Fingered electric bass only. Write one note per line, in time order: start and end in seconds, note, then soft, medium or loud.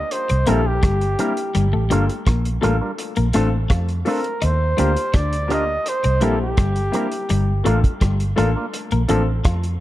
0.31 0.46 C2 medium
0.49 0.85 A#1 medium
0.83 1.15 G1 medium
1.56 1.72 G1 loud
1.74 1.89 A1 medium
1.92 2.08 G1 medium
2.27 2.58 A#1 medium
2.64 2.79 A1 medium
3.18 3.33 A#1 medium
3.36 3.66 A1 medium
3.71 4.02 F2 medium
4.43 4.74 D#2 loud
4.80 4.95 D2 medium
5.14 5.77 D2 medium
6.05 6.23 C2 medium
6.23 6.54 A#1 medium
6.58 6.89 G1 medium
7.31 7.61 G1 medium
7.67 7.82 A1 medium
8.02 8.33 G1 medium
8.39 8.54 A1 medium
8.93 9.07 A#1 medium
9.10 9.41 A1 medium
9.45 9.76 F2 medium